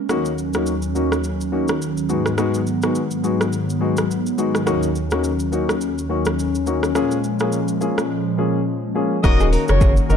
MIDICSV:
0, 0, Header, 1, 8, 480
1, 0, Start_track
1, 0, Key_signature, -6, "minor"
1, 0, Tempo, 571429
1, 80, Time_signature, 4, 2, 24, 8
1, 8542, End_track
2, 0, Start_track
2, 0, Title_t, "Soft synth lead"
2, 0, Program_c, 0, 80
2, 8146, Note_on_c, 0, 73, 72
2, 8347, Note_off_c, 0, 73, 0
2, 8490, Note_on_c, 0, 75, 83
2, 8542, Note_off_c, 0, 75, 0
2, 8542, End_track
3, 0, Start_track
3, 0, Title_t, "Horn section"
3, 0, Program_c, 1, 61
3, 7760, Note_on_c, 1, 66, 115
3, 7760, Note_on_c, 1, 70, 113
3, 7760, Note_on_c, 1, 75, 122
3, 7952, Note_off_c, 1, 66, 0
3, 7952, Note_off_c, 1, 70, 0
3, 7952, Note_off_c, 1, 75, 0
3, 8137, Note_on_c, 1, 66, 88
3, 8137, Note_on_c, 1, 70, 89
3, 8137, Note_on_c, 1, 73, 93
3, 8330, Note_off_c, 1, 66, 0
3, 8330, Note_off_c, 1, 70, 0
3, 8330, Note_off_c, 1, 73, 0
3, 8480, Note_on_c, 1, 63, 84
3, 8480, Note_on_c, 1, 66, 83
3, 8480, Note_on_c, 1, 70, 93
3, 8542, Note_off_c, 1, 63, 0
3, 8542, Note_off_c, 1, 66, 0
3, 8542, Note_off_c, 1, 70, 0
3, 8542, End_track
4, 0, Start_track
4, 0, Title_t, "Clean electric guitar"
4, 0, Program_c, 2, 27
4, 7901, Note_on_c, 2, 68, 84
4, 7969, Note_off_c, 2, 68, 0
4, 8001, Note_on_c, 2, 70, 83
4, 8096, Note_off_c, 2, 70, 0
4, 8241, Note_on_c, 2, 68, 89
4, 8336, Note_off_c, 2, 68, 0
4, 8484, Note_on_c, 2, 70, 79
4, 8542, Note_off_c, 2, 70, 0
4, 8542, End_track
5, 0, Start_track
5, 0, Title_t, "Grand piano"
5, 0, Program_c, 3, 0
5, 78, Note_on_c, 3, 58, 91
5, 80, Note_on_c, 3, 61, 80
5, 81, Note_on_c, 3, 63, 81
5, 84, Note_on_c, 3, 66, 96
5, 248, Note_off_c, 3, 58, 0
5, 249, Note_off_c, 3, 61, 0
5, 250, Note_off_c, 3, 63, 0
5, 251, Note_off_c, 3, 66, 0
5, 460, Note_on_c, 3, 58, 72
5, 462, Note_on_c, 3, 61, 66
5, 462, Note_on_c, 3, 63, 62
5, 464, Note_on_c, 3, 66, 76
5, 602, Note_off_c, 3, 58, 0
5, 603, Note_off_c, 3, 61, 0
5, 603, Note_off_c, 3, 63, 0
5, 604, Note_off_c, 3, 66, 0
5, 797, Note_on_c, 3, 58, 72
5, 799, Note_on_c, 3, 61, 68
5, 801, Note_on_c, 3, 63, 70
5, 802, Note_on_c, 3, 66, 78
5, 968, Note_off_c, 3, 58, 0
5, 969, Note_off_c, 3, 61, 0
5, 970, Note_off_c, 3, 63, 0
5, 970, Note_off_c, 3, 66, 0
5, 1276, Note_on_c, 3, 58, 73
5, 1278, Note_on_c, 3, 61, 66
5, 1279, Note_on_c, 3, 63, 64
5, 1282, Note_on_c, 3, 66, 80
5, 1447, Note_off_c, 3, 58, 0
5, 1448, Note_off_c, 3, 61, 0
5, 1449, Note_off_c, 3, 63, 0
5, 1450, Note_off_c, 3, 66, 0
5, 1755, Note_on_c, 3, 56, 75
5, 1758, Note_on_c, 3, 59, 66
5, 1759, Note_on_c, 3, 63, 65
5, 1760, Note_on_c, 3, 66, 82
5, 1927, Note_off_c, 3, 56, 0
5, 1928, Note_off_c, 3, 59, 0
5, 1929, Note_off_c, 3, 63, 0
5, 1929, Note_off_c, 3, 66, 0
5, 1995, Note_on_c, 3, 56, 89
5, 1998, Note_on_c, 3, 59, 81
5, 1999, Note_on_c, 3, 63, 80
5, 2001, Note_on_c, 3, 66, 96
5, 2167, Note_off_c, 3, 56, 0
5, 2168, Note_off_c, 3, 59, 0
5, 2169, Note_off_c, 3, 63, 0
5, 2169, Note_off_c, 3, 66, 0
5, 2378, Note_on_c, 3, 56, 71
5, 2379, Note_on_c, 3, 59, 65
5, 2382, Note_on_c, 3, 63, 64
5, 2382, Note_on_c, 3, 66, 82
5, 2521, Note_off_c, 3, 56, 0
5, 2521, Note_off_c, 3, 59, 0
5, 2523, Note_off_c, 3, 63, 0
5, 2523, Note_off_c, 3, 66, 0
5, 2717, Note_on_c, 3, 56, 72
5, 2719, Note_on_c, 3, 59, 68
5, 2720, Note_on_c, 3, 63, 68
5, 2722, Note_on_c, 3, 66, 79
5, 2888, Note_off_c, 3, 56, 0
5, 2889, Note_off_c, 3, 59, 0
5, 2889, Note_off_c, 3, 63, 0
5, 2890, Note_off_c, 3, 66, 0
5, 3197, Note_on_c, 3, 56, 76
5, 3198, Note_on_c, 3, 59, 67
5, 3200, Note_on_c, 3, 63, 66
5, 3202, Note_on_c, 3, 66, 80
5, 3367, Note_off_c, 3, 56, 0
5, 3368, Note_off_c, 3, 59, 0
5, 3369, Note_off_c, 3, 63, 0
5, 3370, Note_off_c, 3, 66, 0
5, 3677, Note_on_c, 3, 56, 76
5, 3678, Note_on_c, 3, 59, 70
5, 3681, Note_on_c, 3, 63, 69
5, 3682, Note_on_c, 3, 66, 82
5, 3848, Note_off_c, 3, 56, 0
5, 3848, Note_off_c, 3, 59, 0
5, 3850, Note_off_c, 3, 63, 0
5, 3850, Note_off_c, 3, 66, 0
5, 3915, Note_on_c, 3, 58, 93
5, 3917, Note_on_c, 3, 61, 82
5, 3918, Note_on_c, 3, 63, 83
5, 3920, Note_on_c, 3, 66, 98
5, 4087, Note_off_c, 3, 58, 0
5, 4088, Note_off_c, 3, 61, 0
5, 4088, Note_off_c, 3, 63, 0
5, 4089, Note_off_c, 3, 66, 0
5, 4297, Note_on_c, 3, 58, 73
5, 4299, Note_on_c, 3, 61, 65
5, 4300, Note_on_c, 3, 63, 70
5, 4302, Note_on_c, 3, 66, 81
5, 4440, Note_off_c, 3, 58, 0
5, 4441, Note_off_c, 3, 61, 0
5, 4442, Note_off_c, 3, 63, 0
5, 4443, Note_off_c, 3, 66, 0
5, 4636, Note_on_c, 3, 58, 74
5, 4638, Note_on_c, 3, 61, 66
5, 4640, Note_on_c, 3, 63, 68
5, 4642, Note_on_c, 3, 66, 83
5, 4807, Note_off_c, 3, 58, 0
5, 4808, Note_off_c, 3, 61, 0
5, 4809, Note_off_c, 3, 63, 0
5, 4810, Note_off_c, 3, 66, 0
5, 5118, Note_on_c, 3, 58, 70
5, 5119, Note_on_c, 3, 61, 71
5, 5121, Note_on_c, 3, 63, 66
5, 5123, Note_on_c, 3, 66, 81
5, 5288, Note_off_c, 3, 58, 0
5, 5289, Note_off_c, 3, 61, 0
5, 5290, Note_off_c, 3, 63, 0
5, 5291, Note_off_c, 3, 66, 0
5, 5598, Note_on_c, 3, 58, 77
5, 5598, Note_on_c, 3, 61, 67
5, 5601, Note_on_c, 3, 63, 69
5, 5603, Note_on_c, 3, 66, 83
5, 5768, Note_off_c, 3, 58, 0
5, 5768, Note_off_c, 3, 61, 0
5, 5770, Note_off_c, 3, 63, 0
5, 5770, Note_off_c, 3, 66, 0
5, 5838, Note_on_c, 3, 58, 89
5, 5840, Note_on_c, 3, 61, 82
5, 5841, Note_on_c, 3, 65, 82
5, 5844, Note_on_c, 3, 68, 95
5, 6008, Note_off_c, 3, 58, 0
5, 6009, Note_off_c, 3, 61, 0
5, 6010, Note_off_c, 3, 65, 0
5, 6011, Note_off_c, 3, 68, 0
5, 6217, Note_on_c, 3, 58, 74
5, 6217, Note_on_c, 3, 61, 70
5, 6219, Note_on_c, 3, 65, 65
5, 6222, Note_on_c, 3, 68, 83
5, 6360, Note_off_c, 3, 58, 0
5, 6360, Note_off_c, 3, 61, 0
5, 6361, Note_off_c, 3, 65, 0
5, 6363, Note_off_c, 3, 68, 0
5, 6558, Note_on_c, 3, 58, 75
5, 6559, Note_on_c, 3, 61, 67
5, 6561, Note_on_c, 3, 65, 69
5, 6563, Note_on_c, 3, 68, 82
5, 6728, Note_off_c, 3, 58, 0
5, 6728, Note_off_c, 3, 61, 0
5, 6730, Note_off_c, 3, 65, 0
5, 6730, Note_off_c, 3, 68, 0
5, 7038, Note_on_c, 3, 58, 73
5, 7040, Note_on_c, 3, 61, 69
5, 7042, Note_on_c, 3, 65, 67
5, 7043, Note_on_c, 3, 68, 84
5, 7208, Note_off_c, 3, 58, 0
5, 7209, Note_off_c, 3, 61, 0
5, 7210, Note_off_c, 3, 65, 0
5, 7211, Note_off_c, 3, 68, 0
5, 7517, Note_on_c, 3, 58, 75
5, 7519, Note_on_c, 3, 61, 69
5, 7522, Note_on_c, 3, 65, 70
5, 7522, Note_on_c, 3, 68, 81
5, 7688, Note_off_c, 3, 58, 0
5, 7689, Note_off_c, 3, 61, 0
5, 7690, Note_off_c, 3, 65, 0
5, 7690, Note_off_c, 3, 68, 0
5, 7758, Note_on_c, 3, 58, 96
5, 7759, Note_on_c, 3, 61, 87
5, 7762, Note_on_c, 3, 63, 88
5, 7763, Note_on_c, 3, 66, 106
5, 8430, Note_off_c, 3, 58, 0
5, 8431, Note_off_c, 3, 61, 0
5, 8433, Note_off_c, 3, 63, 0
5, 8433, Note_off_c, 3, 66, 0
5, 8477, Note_on_c, 3, 58, 78
5, 8479, Note_on_c, 3, 61, 72
5, 8480, Note_on_c, 3, 63, 73
5, 8482, Note_on_c, 3, 66, 90
5, 8542, Note_off_c, 3, 58, 0
5, 8542, Note_off_c, 3, 61, 0
5, 8542, Note_off_c, 3, 63, 0
5, 8542, Note_off_c, 3, 66, 0
5, 8542, End_track
6, 0, Start_track
6, 0, Title_t, "Analog synth pad"
6, 0, Program_c, 4, 89
6, 81, Note_on_c, 4, 51, 77
6, 81, Note_on_c, 4, 54, 76
6, 81, Note_on_c, 4, 61, 90
6, 82, Note_on_c, 4, 39, 83
6, 1744, Note_off_c, 4, 39, 0
6, 1744, Note_off_c, 4, 61, 0
6, 1762, Note_on_c, 4, 59, 87
6, 1763, Note_on_c, 4, 44, 84
6, 3899, Note_off_c, 4, 59, 0
6, 3900, Note_off_c, 4, 44, 0
6, 3920, Note_on_c, 4, 39, 81
6, 3921, Note_on_c, 4, 61, 90
6, 5807, Note_off_c, 4, 51, 0
6, 5807, Note_off_c, 4, 54, 0
6, 5821, Note_off_c, 4, 39, 0
6, 5842, Note_on_c, 4, 53, 75
6, 5843, Note_on_c, 4, 46, 83
6, 5843, Note_on_c, 4, 56, 78
6, 7727, Note_off_c, 4, 61, 0
6, 7742, Note_off_c, 4, 46, 0
6, 7742, Note_off_c, 4, 53, 0
6, 7742, Note_off_c, 4, 56, 0
6, 7759, Note_on_c, 4, 51, 89
6, 7759, Note_on_c, 4, 58, 80
6, 7759, Note_on_c, 4, 61, 80
6, 7759, Note_on_c, 4, 66, 99
6, 8542, Note_off_c, 4, 51, 0
6, 8542, Note_off_c, 4, 58, 0
6, 8542, Note_off_c, 4, 61, 0
6, 8542, Note_off_c, 4, 66, 0
6, 8542, End_track
7, 0, Start_track
7, 0, Title_t, "Sub bass"
7, 0, Program_c, 5, 38
7, 7761, Note_on_c, 5, 27, 120
7, 8037, Note_off_c, 5, 27, 0
7, 8139, Note_on_c, 5, 30, 94
7, 8388, Note_off_c, 5, 30, 0
7, 8479, Note_on_c, 5, 30, 103
7, 8542, Note_off_c, 5, 30, 0
7, 8542, End_track
8, 0, Start_track
8, 0, Title_t, "Drums"
8, 79, Note_on_c, 9, 37, 82
8, 79, Note_on_c, 9, 82, 73
8, 163, Note_off_c, 9, 37, 0
8, 163, Note_off_c, 9, 82, 0
8, 213, Note_on_c, 9, 82, 58
8, 297, Note_off_c, 9, 82, 0
8, 321, Note_on_c, 9, 82, 47
8, 405, Note_off_c, 9, 82, 0
8, 449, Note_on_c, 9, 82, 48
8, 460, Note_on_c, 9, 37, 84
8, 533, Note_off_c, 9, 82, 0
8, 544, Note_off_c, 9, 37, 0
8, 557, Note_on_c, 9, 82, 80
8, 641, Note_off_c, 9, 82, 0
8, 690, Note_on_c, 9, 82, 55
8, 774, Note_off_c, 9, 82, 0
8, 801, Note_on_c, 9, 82, 49
8, 885, Note_off_c, 9, 82, 0
8, 941, Note_on_c, 9, 37, 89
8, 945, Note_on_c, 9, 82, 50
8, 1025, Note_off_c, 9, 37, 0
8, 1029, Note_off_c, 9, 82, 0
8, 1039, Note_on_c, 9, 82, 64
8, 1123, Note_off_c, 9, 82, 0
8, 1183, Note_on_c, 9, 82, 51
8, 1267, Note_off_c, 9, 82, 0
8, 1411, Note_on_c, 9, 82, 58
8, 1422, Note_on_c, 9, 37, 92
8, 1495, Note_off_c, 9, 82, 0
8, 1506, Note_off_c, 9, 37, 0
8, 1527, Note_on_c, 9, 82, 69
8, 1611, Note_off_c, 9, 82, 0
8, 1659, Note_on_c, 9, 82, 54
8, 1743, Note_off_c, 9, 82, 0
8, 1758, Note_on_c, 9, 82, 56
8, 1842, Note_off_c, 9, 82, 0
8, 1896, Note_on_c, 9, 37, 84
8, 1902, Note_on_c, 9, 82, 51
8, 1980, Note_off_c, 9, 37, 0
8, 1986, Note_off_c, 9, 82, 0
8, 1998, Note_on_c, 9, 37, 86
8, 1999, Note_on_c, 9, 82, 71
8, 2082, Note_off_c, 9, 37, 0
8, 2083, Note_off_c, 9, 82, 0
8, 2135, Note_on_c, 9, 82, 55
8, 2219, Note_off_c, 9, 82, 0
8, 2241, Note_on_c, 9, 82, 49
8, 2325, Note_off_c, 9, 82, 0
8, 2370, Note_on_c, 9, 82, 47
8, 2381, Note_on_c, 9, 37, 86
8, 2454, Note_off_c, 9, 82, 0
8, 2465, Note_off_c, 9, 37, 0
8, 2479, Note_on_c, 9, 82, 79
8, 2563, Note_off_c, 9, 82, 0
8, 2611, Note_on_c, 9, 82, 54
8, 2695, Note_off_c, 9, 82, 0
8, 2722, Note_on_c, 9, 82, 50
8, 2806, Note_off_c, 9, 82, 0
8, 2863, Note_on_c, 9, 37, 92
8, 2867, Note_on_c, 9, 82, 50
8, 2947, Note_off_c, 9, 37, 0
8, 2951, Note_off_c, 9, 82, 0
8, 2961, Note_on_c, 9, 82, 66
8, 3045, Note_off_c, 9, 82, 0
8, 3105, Note_on_c, 9, 82, 54
8, 3189, Note_off_c, 9, 82, 0
8, 3333, Note_on_c, 9, 82, 60
8, 3345, Note_on_c, 9, 37, 91
8, 3417, Note_off_c, 9, 82, 0
8, 3429, Note_off_c, 9, 37, 0
8, 3452, Note_on_c, 9, 82, 69
8, 3536, Note_off_c, 9, 82, 0
8, 3582, Note_on_c, 9, 82, 54
8, 3666, Note_off_c, 9, 82, 0
8, 3682, Note_on_c, 9, 82, 56
8, 3766, Note_off_c, 9, 82, 0
8, 3820, Note_on_c, 9, 37, 86
8, 3826, Note_on_c, 9, 82, 52
8, 3904, Note_off_c, 9, 37, 0
8, 3910, Note_off_c, 9, 82, 0
8, 3922, Note_on_c, 9, 37, 83
8, 3922, Note_on_c, 9, 82, 75
8, 4006, Note_off_c, 9, 37, 0
8, 4006, Note_off_c, 9, 82, 0
8, 4055, Note_on_c, 9, 82, 54
8, 4139, Note_off_c, 9, 82, 0
8, 4162, Note_on_c, 9, 82, 49
8, 4246, Note_off_c, 9, 82, 0
8, 4290, Note_on_c, 9, 82, 47
8, 4301, Note_on_c, 9, 37, 87
8, 4374, Note_off_c, 9, 82, 0
8, 4385, Note_off_c, 9, 37, 0
8, 4400, Note_on_c, 9, 82, 80
8, 4484, Note_off_c, 9, 82, 0
8, 4532, Note_on_c, 9, 82, 56
8, 4616, Note_off_c, 9, 82, 0
8, 4642, Note_on_c, 9, 82, 47
8, 4726, Note_off_c, 9, 82, 0
8, 4781, Note_on_c, 9, 37, 89
8, 4785, Note_on_c, 9, 82, 49
8, 4865, Note_off_c, 9, 37, 0
8, 4869, Note_off_c, 9, 82, 0
8, 4880, Note_on_c, 9, 82, 66
8, 4964, Note_off_c, 9, 82, 0
8, 5026, Note_on_c, 9, 82, 52
8, 5110, Note_off_c, 9, 82, 0
8, 5252, Note_on_c, 9, 82, 59
8, 5264, Note_on_c, 9, 37, 93
8, 5336, Note_off_c, 9, 82, 0
8, 5348, Note_off_c, 9, 37, 0
8, 5369, Note_on_c, 9, 82, 70
8, 5453, Note_off_c, 9, 82, 0
8, 5501, Note_on_c, 9, 82, 54
8, 5585, Note_off_c, 9, 82, 0
8, 5600, Note_on_c, 9, 82, 56
8, 5684, Note_off_c, 9, 82, 0
8, 5737, Note_on_c, 9, 37, 84
8, 5743, Note_on_c, 9, 82, 51
8, 5821, Note_off_c, 9, 37, 0
8, 5827, Note_off_c, 9, 82, 0
8, 5840, Note_on_c, 9, 37, 88
8, 5841, Note_on_c, 9, 82, 72
8, 5924, Note_off_c, 9, 37, 0
8, 5925, Note_off_c, 9, 82, 0
8, 5974, Note_on_c, 9, 82, 56
8, 6058, Note_off_c, 9, 82, 0
8, 6081, Note_on_c, 9, 82, 51
8, 6165, Note_off_c, 9, 82, 0
8, 6211, Note_on_c, 9, 82, 47
8, 6221, Note_on_c, 9, 37, 84
8, 6295, Note_off_c, 9, 82, 0
8, 6305, Note_off_c, 9, 37, 0
8, 6320, Note_on_c, 9, 82, 78
8, 6404, Note_off_c, 9, 82, 0
8, 6452, Note_on_c, 9, 82, 55
8, 6536, Note_off_c, 9, 82, 0
8, 6562, Note_on_c, 9, 82, 46
8, 6646, Note_off_c, 9, 82, 0
8, 6703, Note_on_c, 9, 37, 89
8, 6707, Note_on_c, 9, 82, 49
8, 6787, Note_off_c, 9, 37, 0
8, 6791, Note_off_c, 9, 82, 0
8, 7761, Note_on_c, 9, 36, 117
8, 7761, Note_on_c, 9, 37, 91
8, 7762, Note_on_c, 9, 82, 78
8, 7845, Note_off_c, 9, 36, 0
8, 7845, Note_off_c, 9, 37, 0
8, 7846, Note_off_c, 9, 82, 0
8, 7896, Note_on_c, 9, 82, 59
8, 7980, Note_off_c, 9, 82, 0
8, 8002, Note_on_c, 9, 46, 55
8, 8002, Note_on_c, 9, 82, 51
8, 8086, Note_off_c, 9, 46, 0
8, 8086, Note_off_c, 9, 82, 0
8, 8132, Note_on_c, 9, 82, 53
8, 8143, Note_on_c, 9, 37, 92
8, 8216, Note_off_c, 9, 82, 0
8, 8227, Note_off_c, 9, 37, 0
8, 8240, Note_on_c, 9, 82, 91
8, 8242, Note_on_c, 9, 36, 114
8, 8324, Note_off_c, 9, 82, 0
8, 8326, Note_off_c, 9, 36, 0
8, 8372, Note_on_c, 9, 82, 62
8, 8456, Note_off_c, 9, 82, 0
8, 8482, Note_on_c, 9, 82, 52
8, 8542, Note_off_c, 9, 82, 0
8, 8542, End_track
0, 0, End_of_file